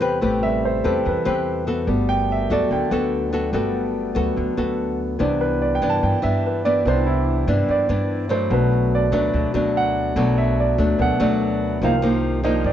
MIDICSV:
0, 0, Header, 1, 4, 480
1, 0, Start_track
1, 0, Tempo, 414079
1, 263, Time_signature, 4, 2, 24, 8
1, 14755, End_track
2, 0, Start_track
2, 0, Title_t, "Grand piano"
2, 0, Program_c, 0, 0
2, 0, Control_c, 0, 64, 127
2, 0, Note_on_c, 0, 48, 37
2, 0, Note_on_c, 0, 55, 36
2, 0, Note_on_c, 0, 59, 42
2, 0, Note_on_c, 0, 67, 61
2, 0, Note_on_c, 0, 69, 49
2, 0, Note_on_c, 0, 71, 62
2, 0, Note_on_c, 0, 72, 63
2, 474, Note_off_c, 0, 48, 0
2, 474, Note_on_c, 0, 48, 44
2, 482, Note_off_c, 0, 55, 0
2, 482, Note_on_c, 0, 55, 41
2, 497, Note_on_c, 0, 76, 79
2, 733, Note_off_c, 0, 76, 0
2, 756, Note_off_c, 0, 72, 0
2, 756, Note_on_c, 0, 72, 54
2, 981, Note_off_c, 0, 69, 0
2, 981, Note_on_c, 0, 69, 61
2, 983, Note_off_c, 0, 72, 0
2, 1215, Note_off_c, 0, 69, 0
2, 1260, Note_off_c, 0, 71, 0
2, 1260, Note_on_c, 0, 71, 59
2, 1690, Note_off_c, 0, 71, 0
2, 2123, Note_off_c, 0, 48, 0
2, 2127, Note_off_c, 0, 55, 0
2, 2178, Note_on_c, 0, 57, 41
2, 2186, Note_off_c, 0, 59, 0
2, 2186, Note_on_c, 0, 59, 51
2, 2198, Control_c, 0, 64, 0
2, 2206, Note_off_c, 0, 67, 0
2, 2421, Note_on_c, 0, 79, 87
2, 2432, Control_c, 0, 64, 127
2, 2500, Note_off_c, 0, 57, 0
2, 2504, Note_off_c, 0, 59, 0
2, 2655, Note_off_c, 0, 79, 0
2, 2690, Note_on_c, 0, 76, 64
2, 2906, Note_on_c, 0, 54, 39
2, 2910, Note_off_c, 0, 76, 0
2, 2914, Note_on_c, 0, 57, 38
2, 2916, Note_on_c, 0, 59, 42
2, 2925, Note_on_c, 0, 74, 73
2, 3121, Note_off_c, 0, 54, 0
2, 3125, Note_off_c, 0, 57, 0
2, 3127, Note_off_c, 0, 59, 0
2, 3148, Note_off_c, 0, 74, 0
2, 3157, Note_on_c, 0, 79, 64
2, 3598, Note_off_c, 0, 79, 0
2, 4103, Note_on_c, 0, 57, 44
2, 4111, Note_on_c, 0, 59, 50
2, 4423, Note_off_c, 0, 57, 0
2, 4427, Note_off_c, 0, 59, 0
2, 4808, Note_on_c, 0, 54, 38
2, 4814, Note_on_c, 0, 57, 35
2, 4825, Note_on_c, 0, 59, 41
2, 5031, Note_off_c, 0, 54, 0
2, 5034, Note_off_c, 0, 57, 0
2, 5041, Note_off_c, 0, 59, 0
2, 6013, Note_on_c, 0, 52, 42
2, 6024, Note_on_c, 0, 59, 39
2, 6030, Note_on_c, 0, 62, 47
2, 6041, Control_c, 0, 64, 0
2, 6229, Control_c, 0, 64, 127
2, 6271, Note_on_c, 0, 71, 66
2, 6337, Note_off_c, 0, 52, 0
2, 6343, Note_off_c, 0, 59, 0
2, 6346, Note_off_c, 0, 62, 0
2, 6500, Note_off_c, 0, 71, 0
2, 6511, Note_on_c, 0, 74, 61
2, 6662, Note_off_c, 0, 74, 0
2, 6666, Note_on_c, 0, 79, 72
2, 6820, Note_off_c, 0, 79, 0
2, 6835, Note_on_c, 0, 81, 73
2, 6984, Note_off_c, 0, 81, 0
2, 6992, Note_on_c, 0, 79, 64
2, 7221, Note_off_c, 0, 79, 0
2, 7224, Note_on_c, 0, 76, 73
2, 7457, Note_off_c, 0, 76, 0
2, 7492, Note_on_c, 0, 71, 42
2, 7710, Note_on_c, 0, 74, 78
2, 7711, Note_off_c, 0, 71, 0
2, 7939, Note_off_c, 0, 74, 0
2, 7942, Note_on_c, 0, 52, 45
2, 7955, Note_on_c, 0, 59, 44
2, 7961, Note_on_c, 0, 62, 51
2, 7977, Note_on_c, 0, 72, 60
2, 8189, Note_on_c, 0, 64, 65
2, 8193, Note_off_c, 0, 72, 0
2, 8331, Note_off_c, 0, 64, 0
2, 8626, Note_off_c, 0, 52, 0
2, 8633, Note_off_c, 0, 59, 0
2, 8636, Note_off_c, 0, 62, 0
2, 8935, Note_on_c, 0, 74, 66
2, 9593, Note_off_c, 0, 74, 0
2, 9635, Note_on_c, 0, 72, 58
2, 9860, Note_on_c, 0, 54, 49
2, 9862, Note_off_c, 0, 72, 0
2, 9869, Note_on_c, 0, 57, 43
2, 9872, Note_on_c, 0, 59, 50
2, 9879, Control_c, 0, 64, 0
2, 9893, Note_on_c, 0, 71, 68
2, 10050, Control_c, 0, 64, 127
2, 10180, Note_off_c, 0, 54, 0
2, 10185, Note_off_c, 0, 57, 0
2, 10187, Note_off_c, 0, 59, 0
2, 10325, Note_off_c, 0, 71, 0
2, 10373, Note_on_c, 0, 74, 70
2, 10591, Note_off_c, 0, 74, 0
2, 10592, Note_on_c, 0, 71, 54
2, 11034, Note_off_c, 0, 71, 0
2, 11052, Note_on_c, 0, 54, 40
2, 11056, Note_on_c, 0, 57, 36
2, 11065, Note_on_c, 0, 59, 43
2, 11273, Note_off_c, 0, 54, 0
2, 11275, Note_off_c, 0, 57, 0
2, 11280, Note_off_c, 0, 59, 0
2, 11327, Note_on_c, 0, 78, 80
2, 11783, Note_on_c, 0, 54, 43
2, 11787, Note_on_c, 0, 57, 43
2, 11803, Note_on_c, 0, 59, 55
2, 11988, Note_off_c, 0, 78, 0
2, 12031, Note_on_c, 0, 76, 73
2, 12260, Note_off_c, 0, 76, 0
2, 12289, Note_on_c, 0, 74, 61
2, 12467, Note_off_c, 0, 54, 0
2, 12468, Note_off_c, 0, 57, 0
2, 12477, Note_off_c, 0, 59, 0
2, 12723, Note_off_c, 0, 74, 0
2, 12745, Note_on_c, 0, 54, 43
2, 12745, Note_on_c, 0, 57, 37
2, 12747, Note_on_c, 0, 59, 46
2, 12771, Note_on_c, 0, 78, 78
2, 12959, Note_off_c, 0, 54, 0
2, 12959, Note_off_c, 0, 57, 0
2, 12961, Note_off_c, 0, 59, 0
2, 12990, Note_off_c, 0, 78, 0
2, 12995, Note_on_c, 0, 74, 57
2, 13435, Note_off_c, 0, 74, 0
2, 13700, Note_on_c, 0, 51, 44
2, 13702, Note_on_c, 0, 53, 40
2, 13714, Control_c, 0, 64, 0
2, 13714, Note_on_c, 0, 58, 38
2, 13733, Note_on_c, 0, 77, 74
2, 13949, Control_c, 0, 64, 127
2, 14385, Note_off_c, 0, 51, 0
2, 14385, Note_off_c, 0, 53, 0
2, 14391, Note_off_c, 0, 77, 0
2, 14392, Note_off_c, 0, 58, 0
2, 14414, Note_on_c, 0, 51, 37
2, 14417, Note_on_c, 0, 58, 34
2, 14420, Note_on_c, 0, 53, 38
2, 14424, Note_on_c, 0, 62, 41
2, 14426, Note_on_c, 0, 75, 70
2, 14633, Note_off_c, 0, 51, 0
2, 14635, Note_off_c, 0, 58, 0
2, 14637, Note_off_c, 0, 53, 0
2, 14639, Note_off_c, 0, 62, 0
2, 14657, Note_off_c, 0, 75, 0
2, 14672, Note_on_c, 0, 74, 61
2, 14755, Note_off_c, 0, 74, 0
2, 14755, End_track
3, 0, Start_track
3, 0, Title_t, "Nylon-string guitar"
3, 0, Program_c, 1, 24
3, 0, Note_on_c, 1, 52, 51
3, 5, Note_on_c, 1, 60, 61
3, 10, Note_on_c, 1, 67, 55
3, 17, Note_on_c, 1, 71, 69
3, 216, Note_off_c, 1, 67, 0
3, 217, Note_off_c, 1, 60, 0
3, 222, Note_off_c, 1, 71, 0
3, 240, Note_off_c, 1, 52, 0
3, 247, Note_on_c, 1, 57, 56
3, 254, Note_on_c, 1, 60, 60
3, 258, Note_on_c, 1, 67, 57
3, 261, Note_on_c, 1, 71, 62
3, 941, Note_off_c, 1, 60, 0
3, 942, Note_off_c, 1, 67, 0
3, 944, Note_off_c, 1, 71, 0
3, 976, Note_on_c, 1, 60, 64
3, 984, Note_on_c, 1, 67, 60
3, 987, Note_on_c, 1, 71, 63
3, 1192, Note_off_c, 1, 57, 0
3, 1220, Note_on_c, 1, 52, 57
3, 1422, Note_off_c, 1, 60, 0
3, 1424, Note_off_c, 1, 67, 0
3, 1427, Note_off_c, 1, 71, 0
3, 1452, Note_on_c, 1, 60, 68
3, 1456, Note_on_c, 1, 67, 69
3, 1463, Note_on_c, 1, 71, 74
3, 1900, Note_off_c, 1, 60, 0
3, 1903, Note_off_c, 1, 67, 0
3, 1903, Note_off_c, 1, 71, 0
3, 1935, Note_on_c, 1, 59, 56
3, 1942, Note_on_c, 1, 66, 62
3, 1944, Note_on_c, 1, 69, 73
3, 2158, Note_off_c, 1, 52, 0
3, 2168, Note_on_c, 1, 55, 60
3, 2861, Note_off_c, 1, 59, 0
3, 2865, Note_off_c, 1, 66, 0
3, 2865, Note_off_c, 1, 69, 0
3, 2904, Note_on_c, 1, 59, 65
3, 2909, Note_on_c, 1, 66, 68
3, 2917, Note_on_c, 1, 69, 65
3, 3112, Note_off_c, 1, 55, 0
3, 3139, Note_on_c, 1, 50, 58
3, 3346, Note_off_c, 1, 59, 0
3, 3348, Note_off_c, 1, 66, 0
3, 3352, Note_off_c, 1, 69, 0
3, 3377, Note_on_c, 1, 59, 63
3, 3384, Note_on_c, 1, 66, 61
3, 3389, Note_on_c, 1, 69, 69
3, 3822, Note_off_c, 1, 59, 0
3, 3825, Note_off_c, 1, 66, 0
3, 3828, Note_off_c, 1, 69, 0
3, 3856, Note_on_c, 1, 59, 64
3, 3861, Note_on_c, 1, 66, 61
3, 3869, Note_on_c, 1, 69, 69
3, 4062, Note_off_c, 1, 59, 0
3, 4065, Note_off_c, 1, 66, 0
3, 4067, Note_off_c, 1, 69, 0
3, 4078, Note_off_c, 1, 50, 0
3, 4091, Note_on_c, 1, 55, 56
3, 4091, Note_on_c, 1, 59, 55
3, 4098, Note_on_c, 1, 66, 59
3, 4106, Note_on_c, 1, 69, 66
3, 4778, Note_off_c, 1, 59, 0
3, 4783, Note_off_c, 1, 66, 0
3, 4785, Note_off_c, 1, 69, 0
3, 4809, Note_on_c, 1, 59, 64
3, 4818, Note_on_c, 1, 66, 69
3, 4821, Note_on_c, 1, 69, 68
3, 5034, Note_off_c, 1, 55, 0
3, 5060, Note_on_c, 1, 50, 54
3, 5258, Note_off_c, 1, 59, 0
3, 5263, Note_off_c, 1, 66, 0
3, 5264, Note_off_c, 1, 69, 0
3, 5302, Note_on_c, 1, 59, 61
3, 5306, Note_on_c, 1, 66, 60
3, 5310, Note_on_c, 1, 69, 64
3, 5984, Note_off_c, 1, 59, 0
3, 5986, Note_off_c, 1, 66, 0
3, 5989, Note_off_c, 1, 69, 0
3, 5998, Note_off_c, 1, 50, 0
3, 6016, Note_on_c, 1, 48, 58
3, 6019, Note_on_c, 1, 52, 53
3, 6027, Note_on_c, 1, 59, 62
3, 6032, Note_on_c, 1, 62, 64
3, 6702, Note_off_c, 1, 52, 0
3, 6704, Note_off_c, 1, 59, 0
3, 6709, Note_off_c, 1, 62, 0
3, 6744, Note_on_c, 1, 52, 60
3, 6750, Note_on_c, 1, 59, 61
3, 6757, Note_on_c, 1, 62, 68
3, 6957, Note_off_c, 1, 48, 0
3, 6980, Note_on_c, 1, 43, 51
3, 7185, Note_off_c, 1, 52, 0
3, 7189, Note_off_c, 1, 59, 0
3, 7191, Note_off_c, 1, 62, 0
3, 7211, Note_on_c, 1, 52, 57
3, 7218, Note_on_c, 1, 59, 59
3, 7225, Note_on_c, 1, 62, 65
3, 7659, Note_off_c, 1, 52, 0
3, 7662, Note_off_c, 1, 59, 0
3, 7666, Note_off_c, 1, 62, 0
3, 7711, Note_on_c, 1, 52, 60
3, 7716, Note_on_c, 1, 59, 62
3, 7722, Note_on_c, 1, 62, 64
3, 7909, Note_off_c, 1, 52, 0
3, 7909, Note_off_c, 1, 59, 0
3, 7914, Note_off_c, 1, 62, 0
3, 7918, Note_off_c, 1, 43, 0
3, 7961, Note_on_c, 1, 48, 58
3, 7964, Note_on_c, 1, 52, 53
3, 7966, Note_on_c, 1, 59, 57
3, 7972, Note_on_c, 1, 62, 68
3, 8633, Note_off_c, 1, 52, 0
3, 8636, Note_off_c, 1, 59, 0
3, 8639, Note_off_c, 1, 62, 0
3, 8669, Note_on_c, 1, 52, 60
3, 8671, Note_on_c, 1, 59, 61
3, 8675, Note_on_c, 1, 62, 81
3, 8888, Note_off_c, 1, 48, 0
3, 8909, Note_on_c, 1, 43, 61
3, 9108, Note_off_c, 1, 52, 0
3, 9108, Note_off_c, 1, 59, 0
3, 9109, Note_off_c, 1, 62, 0
3, 9146, Note_on_c, 1, 52, 62
3, 9155, Note_on_c, 1, 59, 70
3, 9156, Note_on_c, 1, 62, 68
3, 9586, Note_off_c, 1, 52, 0
3, 9590, Note_off_c, 1, 62, 0
3, 9591, Note_off_c, 1, 59, 0
3, 9613, Note_on_c, 1, 54, 61
3, 9623, Note_on_c, 1, 57, 73
3, 9623, Note_on_c, 1, 62, 71
3, 9841, Note_off_c, 1, 43, 0
3, 9856, Note_on_c, 1, 47, 56
3, 10540, Note_off_c, 1, 54, 0
3, 10542, Note_off_c, 1, 57, 0
3, 10544, Note_off_c, 1, 62, 0
3, 10572, Note_on_c, 1, 54, 60
3, 10578, Note_on_c, 1, 57, 70
3, 10584, Note_on_c, 1, 62, 75
3, 10795, Note_off_c, 1, 47, 0
3, 10820, Note_on_c, 1, 47, 56
3, 11019, Note_off_c, 1, 54, 0
3, 11022, Note_off_c, 1, 57, 0
3, 11025, Note_off_c, 1, 62, 0
3, 11059, Note_on_c, 1, 54, 68
3, 11068, Note_on_c, 1, 57, 63
3, 11071, Note_on_c, 1, 62, 69
3, 11743, Note_off_c, 1, 54, 0
3, 11745, Note_off_c, 1, 57, 0
3, 11748, Note_off_c, 1, 62, 0
3, 11757, Note_off_c, 1, 47, 0
3, 11776, Note_on_c, 1, 47, 60
3, 11782, Note_on_c, 1, 54, 69
3, 11787, Note_on_c, 1, 57, 57
3, 11793, Note_on_c, 1, 62, 62
3, 12461, Note_off_c, 1, 54, 0
3, 12466, Note_off_c, 1, 57, 0
3, 12469, Note_off_c, 1, 62, 0
3, 12500, Note_on_c, 1, 54, 64
3, 12507, Note_on_c, 1, 57, 60
3, 12516, Note_on_c, 1, 62, 67
3, 12716, Note_off_c, 1, 47, 0
3, 12737, Note_on_c, 1, 47, 58
3, 12945, Note_off_c, 1, 54, 0
3, 12945, Note_off_c, 1, 57, 0
3, 12947, Note_off_c, 1, 62, 0
3, 12980, Note_on_c, 1, 54, 74
3, 12986, Note_on_c, 1, 57, 74
3, 12989, Note_on_c, 1, 62, 75
3, 13662, Note_off_c, 1, 54, 0
3, 13666, Note_off_c, 1, 57, 0
3, 13666, Note_off_c, 1, 62, 0
3, 13675, Note_off_c, 1, 47, 0
3, 13706, Note_on_c, 1, 48, 58
3, 13708, Note_on_c, 1, 53, 54
3, 13713, Note_on_c, 1, 58, 55
3, 13716, Note_on_c, 1, 63, 66
3, 13845, Note_off_c, 1, 53, 0
3, 13849, Note_off_c, 1, 58, 0
3, 13849, Note_off_c, 1, 63, 0
3, 13937, Note_on_c, 1, 53, 68
3, 13949, Note_on_c, 1, 58, 66
3, 13950, Note_on_c, 1, 63, 73
3, 14381, Note_off_c, 1, 53, 0
3, 14387, Note_off_c, 1, 58, 0
3, 14387, Note_off_c, 1, 63, 0
3, 14415, Note_on_c, 1, 53, 64
3, 14424, Note_on_c, 1, 58, 67
3, 14428, Note_on_c, 1, 63, 72
3, 14640, Note_off_c, 1, 48, 0
3, 14657, Note_on_c, 1, 43, 56
3, 14755, Note_off_c, 1, 43, 0
3, 14755, Note_off_c, 1, 53, 0
3, 14755, Note_off_c, 1, 58, 0
3, 14755, Note_off_c, 1, 63, 0
3, 14755, End_track
4, 0, Start_track
4, 0, Title_t, "Upright bass"
4, 0, Program_c, 2, 32
4, 0, Note_on_c, 2, 40, 73
4, 223, Note_off_c, 2, 40, 0
4, 269, Note_on_c, 2, 33, 86
4, 940, Note_off_c, 2, 33, 0
4, 987, Note_on_c, 2, 40, 96
4, 1209, Note_off_c, 2, 40, 0
4, 1230, Note_on_c, 2, 40, 89
4, 1339, Note_off_c, 2, 40, 0
4, 1468, Note_on_c, 2, 40, 81
4, 2140, Note_off_c, 2, 40, 0
4, 2173, Note_on_c, 2, 31, 92
4, 2852, Note_off_c, 2, 31, 0
4, 2897, Note_on_c, 2, 38, 93
4, 3124, Note_off_c, 2, 38, 0
4, 3139, Note_on_c, 2, 38, 87
4, 3253, Note_off_c, 2, 38, 0
4, 3376, Note_on_c, 2, 38, 87
4, 4053, Note_off_c, 2, 38, 0
4, 4091, Note_on_c, 2, 31, 89
4, 4771, Note_off_c, 2, 31, 0
4, 4820, Note_on_c, 2, 38, 89
4, 5045, Note_off_c, 2, 38, 0
4, 5068, Note_on_c, 2, 38, 85
4, 5178, Note_off_c, 2, 38, 0
4, 5305, Note_on_c, 2, 38, 80
4, 5978, Note_off_c, 2, 38, 0
4, 6028, Note_on_c, 2, 36, 92
4, 6699, Note_off_c, 2, 36, 0
4, 6748, Note_on_c, 2, 43, 87
4, 6969, Note_off_c, 2, 43, 0
4, 6990, Note_on_c, 2, 43, 82
4, 7098, Note_off_c, 2, 43, 0
4, 7232, Note_on_c, 2, 43, 82
4, 7901, Note_off_c, 2, 43, 0
4, 7944, Note_on_c, 2, 36, 92
4, 8617, Note_off_c, 2, 36, 0
4, 8664, Note_on_c, 2, 43, 97
4, 8887, Note_off_c, 2, 43, 0
4, 8907, Note_on_c, 2, 43, 85
4, 9016, Note_off_c, 2, 43, 0
4, 9147, Note_on_c, 2, 43, 86
4, 9819, Note_off_c, 2, 43, 0
4, 9858, Note_on_c, 2, 35, 96
4, 10534, Note_off_c, 2, 35, 0
4, 10577, Note_on_c, 2, 38, 103
4, 10803, Note_off_c, 2, 38, 0
4, 10823, Note_on_c, 2, 38, 88
4, 10934, Note_off_c, 2, 38, 0
4, 11061, Note_on_c, 2, 38, 87
4, 11735, Note_off_c, 2, 38, 0
4, 11778, Note_on_c, 2, 35, 91
4, 12453, Note_off_c, 2, 35, 0
4, 12500, Note_on_c, 2, 38, 100
4, 12724, Note_off_c, 2, 38, 0
4, 12740, Note_on_c, 2, 38, 92
4, 12853, Note_off_c, 2, 38, 0
4, 12980, Note_on_c, 2, 38, 87
4, 13654, Note_off_c, 2, 38, 0
4, 13696, Note_on_c, 2, 36, 94
4, 14612, Note_off_c, 2, 36, 0
4, 14655, Note_on_c, 2, 43, 84
4, 14755, Note_off_c, 2, 43, 0
4, 14755, End_track
0, 0, End_of_file